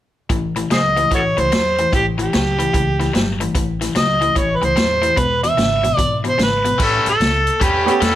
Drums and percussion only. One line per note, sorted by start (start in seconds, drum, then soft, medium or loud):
0.30 kick loud
0.30 closed hi-hat medium
0.56 closed hi-hat medium
0.71 snare loud
0.71 closed hi-hat medium
0.97 closed hi-hat medium
1.11 kick loud
1.11 closed hi-hat medium
1.38 closed hi-hat medium
1.52 snare loud
1.52 closed hi-hat medium
1.78 closed hi-hat medium
1.93 kick loud
1.93 closed hi-hat medium
2.19 closed hi-hat medium
2.33 snare medium
2.33 closed hi-hat medium
2.60 closed hi-hat medium
2.74 kick loud
2.74 closed hi-hat medium
3.01 snare soft
3.01 closed hi-hat soft
3.15 snare loud
3.15 closed hi-hat medium
3.41 closed hi-hat medium
3.55 kick loud
3.55 closed hi-hat medium
3.81 snare soft
3.81 closed hi-hat medium
3.95 snare medium
3.95 closed hi-hat medium
4.22 closed hi-hat medium
4.36 kick medium
4.36 closed hi-hat medium
4.62 closed hi-hat medium
4.77 snare loud
4.77 closed hi-hat medium
5.03 closed hi-hat medium
5.17 kick loud
5.17 closed hi-hat medium
5.44 closed hi-hat medium
5.58 snare medium
5.58 closed hi-hat medium
5.84 closed hi-hat medium
5.98 kick medium
5.98 closed hi-hat medium
6.25 closed hi-hat soft
6.39 snare loud
6.39 closed hi-hat medium
6.65 closed hi-hat medium
6.80 kick loud
6.80 crash medium
7.06 closed hi-hat medium
7.21 snare loud
7.21 closed hi-hat medium
7.47 closed hi-hat medium
7.61 kick loud
7.61 closed hi-hat medium
7.88 closed hi-hat medium
8.02 snare loud
8.02 closed hi-hat medium